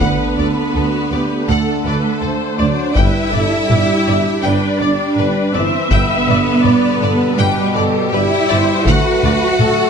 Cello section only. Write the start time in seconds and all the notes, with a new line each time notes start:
0.01 B3
1.50 A3
2.60 D4
2.96 E4
4.44 D4
5.55 C4
5.92 B3
7.38 G3
8.13 E4
8.88 F#4